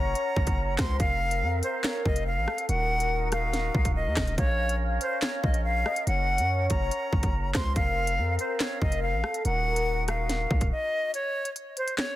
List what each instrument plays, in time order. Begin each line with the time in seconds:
Already playing: 808-style bass F#1, flute section C#4 A#4 F#5, soft synth lead C#5, flute A#5
0.15 closed hi-hat
0.36 808-style bass F#1, kick
0.47 808-style bass F#1, kick, closed hi-hat
0.78 808-style bass C#2, soft synth lead C5, flute C6, kick, cross-stick, snare, clap, closed hi-hat
1.00 808-style bass F1, flute section C4 F5, soft synth lead A#4, flute F5, kick, closed hi-hat
1.31 closed hi-hat
1.42 808-style bass F2
1.63 flute C5, closed hi-hat
1.84 flute C#5, snare, clap, closed hi-hat
2.06 808-style bass F1, flute D#5, kick
2.16 closed hi-hat
2.27 flute F5
2.37 808-style bass A1
2.48 soft synth lead A4, cross-stick
2.58 closed hi-hat
2.69 808-style bass D#1, flute section D#4 F#4 A#4, soft synth lead A#4, flute F#5, closed hi-hat
3.00 closed hi-hat
3.32 flute F5, cross-stick, closed hi-hat
3.53 snare, closed hi-hat
3.75 808-style bass A#1, kick
3.85 808-style bass D#1, kick, closed hi-hat
3.96 flute D#5
4.06 808-style bass D#2
4.16 808-style bass D#1, kick, cross-stick, snare, clap, closed hi-hat, open hi-hat
4.27 closed hi-hat
4.38 808-style bass A#1, flute section C#4 C#5, flute C#5, soft synth lead F5, kick, closed hi-hat
4.69 closed hi-hat
5.01 flute C5, closed hi-hat
5.22 flute C#5, snare, clap, closed hi-hat
5.43 808-style bass A#1, flute D#5, kick
5.54 closed hi-hat
5.65 flute F5
5.86 soft synth lead D#5, cross-stick
5.96 closed hi-hat
6.07 808-style bass F#1, flute section C#4 F#5, soft synth lead C#5, flute F#5, closed hi-hat
6.38 808-style bass F#2, closed hi-hat
6.70 808-style bass F#1, flute A#5, kick, closed hi-hat
6.91 closed hi-hat
7.13 808-style bass F#1, kick
7.23 808-style bass F#1, kick, closed hi-hat
7.54 808-style bass C#2, soft synth lead C5, flute C6, kick, cross-stick, snare, clap, closed hi-hat
7.76 808-style bass F1, flute section C4 F5, soft synth lead A#4, flute F5, kick, closed hi-hat
8.07 closed hi-hat
8.18 808-style bass F2
8.39 flute C5, closed hi-hat
8.60 flute C#5, snare, clap, closed hi-hat
8.82 808-style bass F1, flute D#5, kick
8.92 closed hi-hat
9.03 flute F5
9.13 808-style bass A1
9.24 soft synth lead A4, cross-stick
9.34 closed hi-hat
9.45 808-style bass D#1, flute section D#4 F#4, soft synth lead A#4, flute F#5, closed hi-hat
9.76 closed hi-hat
10.08 flute F5, cross-stick, closed hi-hat
10.29 snare, closed hi-hat
10.51 808-style bass A#1, kick
10.61 808-style bass D#1, kick, closed hi-hat
10.72 flute D#5
11.14 flute C#5, closed hi-hat
11.45 closed hi-hat
11.56 closed hi-hat
11.77 flute C5, closed hi-hat
11.88 closed hi-hat
11.98 flute C#5, snare, clap